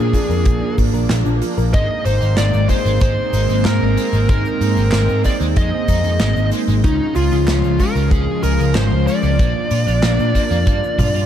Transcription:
Already playing: picked electric bass A#2, analog synth pad F3 A#3 D4, analog polysynth A#3 D4 F4 D5, synth arpeggio sound D4, synth bell G#4, lead electric guitar G#4
0.13 analog polysynth A#3 D4 F4 D5, synth arpeggio sound F4, kick, open hi-hat, shaker
0.30 picked electric bass F2, synth arpeggio sound A#4, shaker
0.45 picked electric bass A#1, synth arpeggio sound A#3, kick, closed hi-hat, shaker
0.62 synth arpeggio sound D4
0.78 picked electric bass G#1, synth arpeggio sound F4, kick, open hi-hat, shaker
0.93 picked electric bass A#1, analog polysynth A#3 D4 F4 D5, synth arpeggio sound A#4, shaker
1.10 picked electric bass A#1, synth arpeggio sound A#3, snare, clap, closed hi-hat, shaker
1.26 picked electric bass A#1, synth arpeggio sound D4, shaker
1.42 synth arpeggio sound F4, open hi-hat, shaker
1.57 picked electric bass A#1, synth arpeggio sound A#4, shaker
1.73 picked electric bass G#1, analog synth pad G#3 C4, overdriven electric guitar G#3, analog polysynth A#3 D#4 G#4 C5, synth bell D#5, lead electric guitar D#5, kick, closed hi-hat, shaker
2.05 picked electric bass G#1, overdriven electric guitar D#4, lead electric guitar C5, synth bell C5, open hi-hat, shaker
2.21 picked electric bass G#1, overdriven electric guitar D#4, shaker
2.37 picked electric bass G#1, overdriven electric guitar G#3, lead electric guitar D5, synth bell D5, snare, clap, closed hi-hat, shaker
2.53 picked electric bass G#1, shaker
2.69 overdriven electric guitar G#3, analog polysynth A#3 D#4 G#4 C5, lead electric guitar C5, synth bell C5, kick, open hi-hat, shaker
2.85 picked electric bass G#1, overdriven electric guitar G#3, shaker
3.00 picked electric bass G#1, overdriven electric guitar G#3, synth bell C5, lead electric guitar C5, kick, closed hi-hat, shaker
3.33 picked electric bass G#1, overdriven electric guitar D#4, open hi-hat, shaker
3.49 picked electric bass G#1, overdriven electric guitar D#4, shaker
3.65 picked electric bass G#2, overdriven electric guitar G#3, lead electric guitar A#4, synth bell A#4, snare, clap, closed hi-hat, shaker
3.81 picked electric bass G#1
3.97 overdriven electric guitar G#3, open hi-hat, shaker
4.13 picked electric bass G#1, overdriven electric guitar G#3, shaker
4.29 picked electric bass G#1, overdriven electric guitar G#3, analog polysynth A#3 D#4 G#4 C5, lead electric guitar A#4, synth bell A#4, kick, closed hi-hat, shaker
4.45 shaker
4.61 picked electric bass G#2, overdriven electric guitar D#4, open hi-hat, shaker
4.77 picked electric bass G#1, overdriven electric guitar D#4, shaker
4.92 picked electric bass G#1, overdriven electric guitar G#3, snare, clap, closed hi-hat, shaker
5.09 picked electric bass G#2, shaker
5.24 overdriven electric guitar G#3, analog polysynth A#3 D#4 G#4 C5, synth bell D5, lead electric guitar D5, kick, open hi-hat, shaker
5.41 picked electric bass D#2, overdriven electric guitar G#3, shaker
5.56 picked electric bass F2, overdriven electric guitar G#3, synth bell D#5, lead electric guitar D#5, kick, closed hi-hat, shaker
5.88 picked electric bass F2, overdriven electric guitar D#4, kick, open hi-hat, shaker
6.04 picked electric bass F2, overdriven electric guitar D#4, shaker
6.20 picked electric bass G#1, overdriven electric guitar G#3, snare, clap, closed hi-hat, shaker
6.36 picked electric bass G#1, shaker
6.51 overdriven electric guitar G#3, open hi-hat, shaker
6.68 picked electric bass G#1, overdriven electric guitar G#3, shaker
6.84 picked electric bass C#2, analog synth pad C#3 F3, analog polysynth G#3 C#4 F4 C#5, overdriven electric guitar C#4, synth bell D#4, lead electric guitar D#4, kick, closed hi-hat, shaker
7.15 picked electric bass C#2, synth bell F4, lead electric guitar F4, overdriven electric guitar G#4, open hi-hat, shaker
7.31 picked electric bass C#2, overdriven electric guitar G#4, shaker
7.47 picked electric bass C#2, overdriven electric guitar C#4, snare, clap, closed hi-hat, shaker
7.64 picked electric bass C#2, shaker
7.79 analog polysynth G#3 C#4 F4 F5, overdriven electric guitar C#4, synth bell A#4, lead electric guitar A#4, kick, open hi-hat, shaker
7.96 picked electric bass C#2, overdriven electric guitar C#4, shaker
8.11 picked electric bass C#2, overdriven electric guitar C#4, synth bell G#4, lead electric guitar G#4, kick, closed hi-hat, shaker
8.43 picked electric bass C#2, overdriven electric guitar G#4, synth bell A#4, lead electric guitar A#4, open hi-hat, shaker
8.60 picked electric bass C#2, overdriven electric guitar G#4, shaker
8.75 picked electric bass G#1, overdriven electric guitar C#4, synth bell C5, lead electric guitar C5, snare, clap, closed hi-hat, shaker
8.92 picked electric bass C#2
9.07 overdriven electric guitar C#4, synth bell D5, lead electric guitar D5, open hi-hat, shaker
9.23 picked electric bass C#2, overdriven electric guitar C#4, shaker
9.39 picked electric bass A#1, overdriven electric guitar A#3, analog synth pad A#3 D4, analog polysynth A#3 D4 F4 D5, kick, closed hi-hat, shaker
9.71 picked electric bass A#2, overdriven electric guitar F4, open hi-hat, shaker
9.87 picked electric bass A#1, overdriven electric guitar F4, shaker
10.03 picked electric bass A#1, overdriven electric guitar A#3, snare, clap, closed hi-hat, shaker
10.19 picked electric bass A#2, shaker
10.35 overdriven electric guitar A#3, analog polysynth A#3 D4 F4 D5, kick, open hi-hat, shaker
10.51 picked electric bass F2, overdriven electric guitar A#3, shaker
10.67 picked electric bass G2, overdriven electric guitar A#3, kick, closed hi-hat, shaker
10.84 shaker
10.99 picked electric bass G2, overdriven electric guitar F4, kick, open hi-hat, high tom, shaker
11.15 picked electric bass G2, analog polysynth A#3 D4 F4 D5, overdriven electric guitar F4, shaker

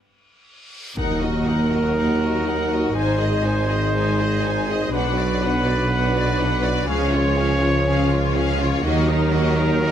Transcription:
Already playing: reverse cymbal
0.97 double bass section D#2, cello section D#2, tuba D#2, french horn section F#3 D#4, viola section D#4, violin section A#4 F#5, trumpet A#4, impact
1.22 viola section F#4, violin section F#4 D#5
1.46 viola section D#4, violin section A#4 F#5
1.71 viola section F#4, violin section F#4 D#5
1.95 viola section D#4, violin section A#4 F#5
2.19 viola section F#4, violin section F#4 D#5
2.45 viola section D#4, violin section A#4 F#5
2.69 viola section F#4, violin section F#4 D#5
2.94 tuba G#1, double bass section G#1, cello section G#2, french horn section G#3, viola section D#4, violin section C5 G#5, trumpet C5
3.19 viola section G#4, violin section D#5
3.44 viola section D#4, violin section C5 G#5
3.69 viola section G#4, violin section D#5
3.94 viola section D#4, violin section C5 G#5
4.18 viola section G#4, violin section D#5
4.43 viola section D#4, violin section C5 G#5
4.68 viola section G#4, violin section D#5
4.92 tuba B1, double bass section B1, cello section B2, french horn section F#3 D4, viola section D4, trumpet B4, violin section B4 F#5
5.16 viola section F#4, violin section D5
5.41 viola section D4, violin section B4 F#5
5.64 viola section F#4, violin section D5
5.89 viola section D4, violin section B4 F#5
6.15 viola section F#4, violin section D5
6.39 viola section D4, violin section B4 F#5
6.63 viola section F#4, violin section D5
6.87 double bass section C#2, tuba C#2, cello section C#3, french horn section F3 C#4, viola section C#4, violin section G#4 F5, trumpet C#5
7.11 violin section F4 C#5, viola section F4
7.37 viola section C#4, violin section G#4 F5
7.61 violin section F4 C#5, viola section F4
7.85 viola section C#4, violin section G#4 F5
8.09 violin section F4 C#5, viola section F4
8.35 viola section C#4, violin section G#4 F5
8.60 violin section F4 C#5, viola section F4
8.83 double bass section D#2, tuba D#2, cello section D#3, french horn section F#3 D#4, viola section A#3, violin section F#4 D#5, trumpet A#4
9.08 violin section D#4 A#4, viola section D#4
9.33 viola section A#3, violin section F#4 D#5
9.57 violin section D#4 A#4, viola section D#4
9.82 viola section A#3, violin section F#4 D#5

